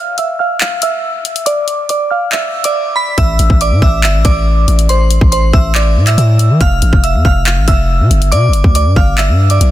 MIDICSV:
0, 0, Header, 1, 4, 480
1, 0, Start_track
1, 0, Key_signature, 0, "minor"
1, 0, Tempo, 428571
1, 1639, Time_signature, 4, 2, 24, 8
1, 10876, End_track
2, 0, Start_track
2, 0, Title_t, "Synth bell"
2, 0, Program_c, 0, 98
2, 0, Note_on_c, 0, 77, 81
2, 0, Note_on_c, 0, 89, 106
2, 173, Note_off_c, 0, 89, 0
2, 178, Note_off_c, 0, 77, 0
2, 200, Note_on_c, 0, 88, 82
2, 209, Note_on_c, 0, 76, 57
2, 400, Note_off_c, 0, 88, 0
2, 405, Note_off_c, 0, 76, 0
2, 439, Note_on_c, 0, 89, 82
2, 448, Note_on_c, 0, 77, 60
2, 640, Note_off_c, 0, 89, 0
2, 645, Note_off_c, 0, 77, 0
2, 681, Note_on_c, 0, 89, 80
2, 690, Note_on_c, 0, 77, 57
2, 880, Note_off_c, 0, 89, 0
2, 886, Note_off_c, 0, 77, 0
2, 921, Note_on_c, 0, 88, 78
2, 930, Note_on_c, 0, 76, 60
2, 1597, Note_off_c, 0, 88, 0
2, 1602, Note_off_c, 0, 76, 0
2, 1633, Note_on_c, 0, 86, 96
2, 1642, Note_on_c, 0, 74, 80
2, 2087, Note_off_c, 0, 86, 0
2, 2092, Note_off_c, 0, 74, 0
2, 2121, Note_on_c, 0, 86, 81
2, 2130, Note_on_c, 0, 74, 63
2, 2321, Note_off_c, 0, 86, 0
2, 2326, Note_off_c, 0, 74, 0
2, 2358, Note_on_c, 0, 89, 71
2, 2366, Note_on_c, 0, 77, 55
2, 2559, Note_off_c, 0, 89, 0
2, 2564, Note_off_c, 0, 77, 0
2, 2599, Note_on_c, 0, 88, 83
2, 2608, Note_on_c, 0, 76, 61
2, 2937, Note_off_c, 0, 88, 0
2, 2942, Note_off_c, 0, 76, 0
2, 2963, Note_on_c, 0, 86, 72
2, 2971, Note_on_c, 0, 74, 58
2, 3299, Note_off_c, 0, 86, 0
2, 3304, Note_off_c, 0, 74, 0
2, 3312, Note_on_c, 0, 83, 80
2, 3321, Note_on_c, 0, 95, 68
2, 3515, Note_off_c, 0, 83, 0
2, 3521, Note_off_c, 0, 95, 0
2, 3558, Note_on_c, 0, 88, 103
2, 3567, Note_on_c, 0, 76, 79
2, 4010, Note_off_c, 0, 88, 0
2, 4014, Note_off_c, 0, 76, 0
2, 4045, Note_on_c, 0, 86, 86
2, 4054, Note_on_c, 0, 74, 64
2, 4243, Note_off_c, 0, 86, 0
2, 4248, Note_off_c, 0, 74, 0
2, 4282, Note_on_c, 0, 88, 81
2, 4292, Note_on_c, 0, 76, 67
2, 4481, Note_off_c, 0, 88, 0
2, 4487, Note_off_c, 0, 76, 0
2, 4522, Note_on_c, 0, 88, 82
2, 4531, Note_on_c, 0, 76, 62
2, 4721, Note_off_c, 0, 88, 0
2, 4726, Note_off_c, 0, 76, 0
2, 4756, Note_on_c, 0, 86, 83
2, 4765, Note_on_c, 0, 74, 64
2, 5434, Note_off_c, 0, 86, 0
2, 5439, Note_off_c, 0, 74, 0
2, 5479, Note_on_c, 0, 84, 88
2, 5489, Note_on_c, 0, 72, 71
2, 5930, Note_off_c, 0, 84, 0
2, 5935, Note_off_c, 0, 72, 0
2, 5957, Note_on_c, 0, 84, 77
2, 5966, Note_on_c, 0, 72, 63
2, 6158, Note_off_c, 0, 84, 0
2, 6163, Note_off_c, 0, 72, 0
2, 6199, Note_on_c, 0, 88, 75
2, 6208, Note_on_c, 0, 76, 63
2, 6400, Note_off_c, 0, 88, 0
2, 6405, Note_off_c, 0, 76, 0
2, 6441, Note_on_c, 0, 86, 79
2, 6449, Note_on_c, 0, 74, 64
2, 6778, Note_off_c, 0, 86, 0
2, 6783, Note_off_c, 0, 74, 0
2, 6798, Note_on_c, 0, 88, 74
2, 6807, Note_on_c, 0, 76, 55
2, 6898, Note_off_c, 0, 88, 0
2, 6904, Note_off_c, 0, 76, 0
2, 6918, Note_on_c, 0, 88, 70
2, 6927, Note_on_c, 0, 76, 57
2, 7370, Note_off_c, 0, 88, 0
2, 7375, Note_off_c, 0, 76, 0
2, 7405, Note_on_c, 0, 89, 103
2, 7414, Note_on_c, 0, 77, 79
2, 7853, Note_off_c, 0, 89, 0
2, 7858, Note_off_c, 0, 77, 0
2, 7880, Note_on_c, 0, 88, 80
2, 7888, Note_on_c, 0, 76, 56
2, 8080, Note_off_c, 0, 88, 0
2, 8085, Note_off_c, 0, 76, 0
2, 8120, Note_on_c, 0, 89, 87
2, 8128, Note_on_c, 0, 77, 61
2, 8320, Note_off_c, 0, 89, 0
2, 8325, Note_off_c, 0, 77, 0
2, 8359, Note_on_c, 0, 89, 80
2, 8368, Note_on_c, 0, 77, 56
2, 8559, Note_off_c, 0, 89, 0
2, 8564, Note_off_c, 0, 77, 0
2, 8600, Note_on_c, 0, 88, 78
2, 8609, Note_on_c, 0, 76, 62
2, 9276, Note_off_c, 0, 88, 0
2, 9281, Note_off_c, 0, 76, 0
2, 9314, Note_on_c, 0, 86, 97
2, 9323, Note_on_c, 0, 74, 82
2, 9767, Note_off_c, 0, 86, 0
2, 9772, Note_off_c, 0, 74, 0
2, 9803, Note_on_c, 0, 86, 85
2, 9811, Note_on_c, 0, 74, 65
2, 10002, Note_off_c, 0, 86, 0
2, 10007, Note_off_c, 0, 74, 0
2, 10039, Note_on_c, 0, 89, 69
2, 10048, Note_on_c, 0, 77, 55
2, 10240, Note_off_c, 0, 89, 0
2, 10245, Note_off_c, 0, 77, 0
2, 10281, Note_on_c, 0, 88, 84
2, 10290, Note_on_c, 0, 76, 63
2, 10618, Note_off_c, 0, 88, 0
2, 10623, Note_off_c, 0, 76, 0
2, 10643, Note_on_c, 0, 86, 69
2, 10653, Note_on_c, 0, 74, 58
2, 10876, Note_off_c, 0, 74, 0
2, 10876, Note_off_c, 0, 86, 0
2, 10876, End_track
3, 0, Start_track
3, 0, Title_t, "808-style bass"
3, 0, Program_c, 1, 38
3, 3559, Note_on_c, 1, 33, 109
3, 3789, Note_off_c, 1, 33, 0
3, 3799, Note_on_c, 1, 33, 104
3, 3914, Note_off_c, 1, 33, 0
3, 3919, Note_on_c, 1, 33, 105
3, 4158, Note_on_c, 1, 45, 98
3, 4175, Note_off_c, 1, 33, 0
3, 4273, Note_off_c, 1, 45, 0
3, 4279, Note_on_c, 1, 33, 103
3, 4519, Note_on_c, 1, 31, 96
3, 4536, Note_off_c, 1, 33, 0
3, 4638, Note_on_c, 1, 33, 101
3, 4655, Note_off_c, 1, 31, 0
3, 4753, Note_off_c, 1, 33, 0
3, 4759, Note_on_c, 1, 33, 102
3, 5220, Note_off_c, 1, 33, 0
3, 5238, Note_on_c, 1, 33, 103
3, 5815, Note_off_c, 1, 33, 0
3, 5839, Note_on_c, 1, 33, 101
3, 6184, Note_off_c, 1, 33, 0
3, 6199, Note_on_c, 1, 33, 105
3, 6679, Note_on_c, 1, 45, 97
3, 6696, Note_off_c, 1, 33, 0
3, 6907, Note_off_c, 1, 45, 0
3, 6918, Note_on_c, 1, 45, 108
3, 7279, Note_on_c, 1, 52, 97
3, 7296, Note_off_c, 1, 45, 0
3, 7393, Note_off_c, 1, 52, 0
3, 7399, Note_on_c, 1, 29, 111
3, 7629, Note_off_c, 1, 29, 0
3, 7640, Note_on_c, 1, 33, 108
3, 7755, Note_off_c, 1, 33, 0
3, 7759, Note_on_c, 1, 29, 106
3, 7999, Note_on_c, 1, 41, 99
3, 8016, Note_off_c, 1, 29, 0
3, 8113, Note_off_c, 1, 41, 0
3, 8119, Note_on_c, 1, 29, 105
3, 8479, Note_on_c, 1, 33, 100
3, 8496, Note_off_c, 1, 29, 0
3, 8593, Note_off_c, 1, 33, 0
3, 8599, Note_on_c, 1, 29, 104
3, 8958, Note_on_c, 1, 48, 102
3, 8975, Note_off_c, 1, 29, 0
3, 9073, Note_off_c, 1, 48, 0
3, 9079, Note_on_c, 1, 31, 103
3, 9319, Note_on_c, 1, 47, 94
3, 9335, Note_off_c, 1, 31, 0
3, 9499, Note_on_c, 1, 31, 101
3, 9516, Note_off_c, 1, 47, 0
3, 9670, Note_off_c, 1, 31, 0
3, 9679, Note_on_c, 1, 38, 104
3, 9919, Note_on_c, 1, 43, 95
3, 9936, Note_off_c, 1, 38, 0
3, 10033, Note_off_c, 1, 43, 0
3, 10039, Note_on_c, 1, 31, 102
3, 10400, Note_on_c, 1, 43, 101
3, 10417, Note_off_c, 1, 31, 0
3, 10741, Note_off_c, 1, 43, 0
3, 10759, Note_on_c, 1, 35, 106
3, 10874, Note_off_c, 1, 35, 0
3, 10876, End_track
4, 0, Start_track
4, 0, Title_t, "Drums"
4, 199, Note_on_c, 9, 42, 93
4, 311, Note_off_c, 9, 42, 0
4, 679, Note_on_c, 9, 39, 116
4, 791, Note_off_c, 9, 39, 0
4, 916, Note_on_c, 9, 42, 75
4, 1028, Note_off_c, 9, 42, 0
4, 1400, Note_on_c, 9, 42, 82
4, 1512, Note_off_c, 9, 42, 0
4, 1521, Note_on_c, 9, 42, 72
4, 1633, Note_off_c, 9, 42, 0
4, 1638, Note_on_c, 9, 42, 72
4, 1750, Note_off_c, 9, 42, 0
4, 1878, Note_on_c, 9, 42, 80
4, 1990, Note_off_c, 9, 42, 0
4, 2119, Note_on_c, 9, 42, 96
4, 2231, Note_off_c, 9, 42, 0
4, 2599, Note_on_c, 9, 39, 118
4, 2711, Note_off_c, 9, 39, 0
4, 2958, Note_on_c, 9, 42, 81
4, 3070, Note_off_c, 9, 42, 0
4, 3559, Note_on_c, 9, 36, 112
4, 3559, Note_on_c, 9, 42, 73
4, 3671, Note_off_c, 9, 36, 0
4, 3671, Note_off_c, 9, 42, 0
4, 3798, Note_on_c, 9, 42, 81
4, 3910, Note_off_c, 9, 42, 0
4, 3919, Note_on_c, 9, 36, 89
4, 4031, Note_off_c, 9, 36, 0
4, 4041, Note_on_c, 9, 42, 91
4, 4153, Note_off_c, 9, 42, 0
4, 4279, Note_on_c, 9, 36, 89
4, 4391, Note_off_c, 9, 36, 0
4, 4520, Note_on_c, 9, 39, 113
4, 4632, Note_off_c, 9, 39, 0
4, 4757, Note_on_c, 9, 42, 74
4, 4759, Note_on_c, 9, 36, 100
4, 4869, Note_off_c, 9, 42, 0
4, 4871, Note_off_c, 9, 36, 0
4, 5241, Note_on_c, 9, 42, 79
4, 5353, Note_off_c, 9, 42, 0
4, 5362, Note_on_c, 9, 42, 75
4, 5474, Note_off_c, 9, 42, 0
4, 5479, Note_on_c, 9, 42, 74
4, 5591, Note_off_c, 9, 42, 0
4, 5718, Note_on_c, 9, 42, 77
4, 5830, Note_off_c, 9, 42, 0
4, 5839, Note_on_c, 9, 36, 92
4, 5951, Note_off_c, 9, 36, 0
4, 5961, Note_on_c, 9, 42, 95
4, 6073, Note_off_c, 9, 42, 0
4, 6199, Note_on_c, 9, 36, 89
4, 6311, Note_off_c, 9, 36, 0
4, 6439, Note_on_c, 9, 39, 114
4, 6551, Note_off_c, 9, 39, 0
4, 6798, Note_on_c, 9, 42, 84
4, 6799, Note_on_c, 9, 39, 70
4, 6910, Note_off_c, 9, 42, 0
4, 6911, Note_off_c, 9, 39, 0
4, 6922, Note_on_c, 9, 42, 83
4, 7034, Note_off_c, 9, 42, 0
4, 7161, Note_on_c, 9, 42, 75
4, 7273, Note_off_c, 9, 42, 0
4, 7399, Note_on_c, 9, 36, 116
4, 7399, Note_on_c, 9, 42, 74
4, 7511, Note_off_c, 9, 36, 0
4, 7511, Note_off_c, 9, 42, 0
4, 7638, Note_on_c, 9, 42, 81
4, 7750, Note_off_c, 9, 42, 0
4, 7759, Note_on_c, 9, 36, 95
4, 7871, Note_off_c, 9, 36, 0
4, 7881, Note_on_c, 9, 42, 94
4, 7993, Note_off_c, 9, 42, 0
4, 8119, Note_on_c, 9, 36, 90
4, 8231, Note_off_c, 9, 36, 0
4, 8361, Note_on_c, 9, 39, 116
4, 8473, Note_off_c, 9, 39, 0
4, 8598, Note_on_c, 9, 42, 77
4, 8599, Note_on_c, 9, 36, 101
4, 8710, Note_off_c, 9, 42, 0
4, 8711, Note_off_c, 9, 36, 0
4, 9082, Note_on_c, 9, 42, 85
4, 9194, Note_off_c, 9, 42, 0
4, 9203, Note_on_c, 9, 42, 75
4, 9315, Note_off_c, 9, 42, 0
4, 9320, Note_on_c, 9, 42, 76
4, 9432, Note_off_c, 9, 42, 0
4, 9558, Note_on_c, 9, 42, 76
4, 9670, Note_off_c, 9, 42, 0
4, 9679, Note_on_c, 9, 36, 90
4, 9791, Note_off_c, 9, 36, 0
4, 9800, Note_on_c, 9, 42, 92
4, 9912, Note_off_c, 9, 42, 0
4, 10039, Note_on_c, 9, 36, 90
4, 10151, Note_off_c, 9, 36, 0
4, 10280, Note_on_c, 9, 39, 115
4, 10392, Note_off_c, 9, 39, 0
4, 10639, Note_on_c, 9, 42, 85
4, 10751, Note_off_c, 9, 42, 0
4, 10762, Note_on_c, 9, 42, 83
4, 10874, Note_off_c, 9, 42, 0
4, 10876, End_track
0, 0, End_of_file